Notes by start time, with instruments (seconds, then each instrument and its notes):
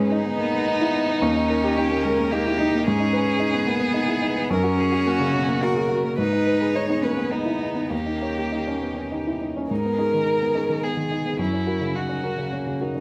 Already playing: grand piano G#2 D#4 B4, cello G#3, violin C#4, string section D#4 G#4 B4
0.00 grand piano G#4
0.11 violin D#4, grand piano D#4
0.25 grand piano B3
0.39 grand piano A#3, cello B3
0.53 grand piano B3
0.67 grand piano D#4
0.81 grand piano E4
0.95 grand piano D#4
1.08 grand piano B3
1.21 grand piano D#2, cello C#4, string section G4 A#4
1.37 grand piano D#4
1.50 grand piano A#4
1.64 grand piano G4
1.76 grand piano D#4, violin G4
1.91 grand piano A#3
2.03 grand piano G#3, violin A#4
2.19 grand piano A#3
2.31 cello A#3, grand piano D#4, violin G4
2.46 grand piano E4
2.58 cello D#4, grand piano D#4
2.75 grand piano A#3
2.85 grand piano G#2, cello C#4, string section G#4 B4, violin G#4
3.00 grand piano D#4
3.13 grand piano B4
3.26 grand piano G#4
3.40 grand piano D#4
3.53 grand piano B3
3.66 grand piano A#3, cello B3
3.80 grand piano B3
3.94 grand piano D#4
4.08 grand piano E4
4.22 grand piano D#4
4.36 grand piano B3
4.49 grand piano F#2, string section C#4 F#4 A#4, cello C#4, violin A#4
4.64 grand piano F#4
4.78 violin G#4, grand piano A#4
4.92 grand piano F#4
5.06 grand piano A#3, violin F#4
5.20 grand piano C#3
5.33 grand piano B2
5.48 grand piano A#3
5.62 grand piano F#4, cello F#4, violin A#4
5.75 grand piano G#4
5.89 grand piano F#4
6.04 grand piano A#3
6.17 grand piano G#2, string section B3 D#4 G#4, cello D#4, violin B4
6.32 grand piano D#4
6.47 grand piano B4
6.61 grand piano G#4
6.75 grand piano D#4, violin C#5
6.89 grand piano B3
7.03 grand piano A#3, cello C#4, violin B4
7.18 grand piano B3
7.31 cello B3, violin D#4, grand piano D#4
7.46 grand piano E4
7.61 grand piano D#4
7.75 grand piano B3
7.90 grand piano D#2, cello A#3, string section C#4 G4, violin G4
8.06 grand piano D#4
8.22 grand piano C#5
8.38 grand piano G4
8.52 grand piano D#4
8.67 grand piano C#4
8.82 grand piano B3
8.97 grand piano C#4
9.12 grand piano D#4
9.27 grand piano E4
9.41 grand piano D#4
9.57 grand piano C#4
9.69 grand piano G#2, string section B3 D#4 G#4, cello D#4, violin A#4
9.85 grand piano B3
9.98 cello C#4, grand piano D#4 G#4
10.14 grand piano D#3
10.26 cello D#4
10.42 grand piano B3
10.55 cello C#4, grand piano D#4 G#4
10.69 grand piano D#3
10.82 cello B3, grand piano B3, violin G#4
10.97 grand piano D#3
11.11 grand piano D#4 G#4
11.26 grand piano B3
11.39 grand piano F#2, cello C#4, string section C#4 F#4 A#4, violin E4
11.53 grand piano C#4
11.67 grand piano F#4 A#4
11.81 grand piano C#3
11.95 cello D#4, violin F#4
12.09 grand piano C#4
12.23 cello C#4, grand piano F#4 A#4
12.38 grand piano C#3
12.52 cello A#3, grand piano C#4
12.67 grand piano C#3
12.81 cello D#4, grand piano F#4 A#4
12.95 grand piano C#4